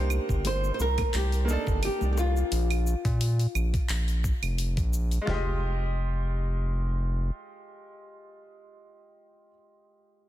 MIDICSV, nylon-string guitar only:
0, 0, Header, 1, 2, 480
1, 0, Start_track
1, 0, Key_signature, -4, "minor"
1, 0, Tempo, 689655
1, 1751, Time_signature, 4, 2, 24, 8
1, 7161, End_track
2, 0, Start_track
2, 0, Title_t, "Nylon-string guitar"
2, 0, Program_c, 0, 24
2, 0, Note_on_c, 0, 67, 101
2, 324, Note_off_c, 0, 67, 0
2, 326, Note_on_c, 0, 72, 106
2, 508, Note_off_c, 0, 72, 0
2, 516, Note_on_c, 0, 72, 75
2, 556, Note_off_c, 0, 72, 0
2, 567, Note_on_c, 0, 70, 111
2, 805, Note_off_c, 0, 70, 0
2, 807, Note_on_c, 0, 67, 109
2, 1023, Note_off_c, 0, 67, 0
2, 1047, Note_on_c, 0, 69, 98
2, 1285, Note_off_c, 0, 69, 0
2, 1288, Note_on_c, 0, 67, 99
2, 1471, Note_off_c, 0, 67, 0
2, 1479, Note_on_c, 0, 67, 65
2, 1517, Note_off_c, 0, 67, 0
2, 1526, Note_on_c, 0, 65, 91
2, 3171, Note_off_c, 0, 65, 0
2, 7161, End_track
0, 0, End_of_file